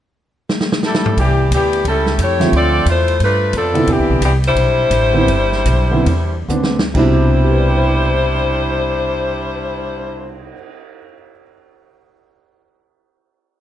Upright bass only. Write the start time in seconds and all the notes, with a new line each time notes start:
1.17 C2
1.51 D2
1.85 C#2
2.18 F2
2.52 D2
2.86 E2
3.20 G2
3.53 F2
3.87 E2
3.99 C2
4.10 B1
4.21 C2
4.55 B1
4.91 A1
5.27 G1
5.66 B1
6.06 E2
6.49 D2
6.95 C2